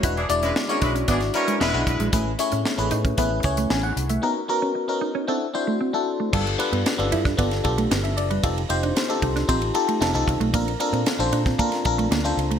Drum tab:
CC |----------------|----------------|----------------|x---------------|
RD |----------------|----------------|----------------|-xxxxxxxxxxxxxxx|
HH |xxxx-xxxxxxx--xx|x-xx-xxxx-xx--xx|----------------|----------------|
SD |----o----o--o---|----o-------o---|----------------|----o--o-o--o---|
BD |o-----o-o-----o-|o------oo-o-----|----------------|o------oo-o-----|

CC |----------------|----------------|
RD |xxxxxxxxxxxxxxxx|xxxxxxxxxxxxxxxx|
HH |----------------|----------------|
SD |----o--o----o---|----o--o-o--o---|
BD |o-----o-o-----o-|o------oo-o-----|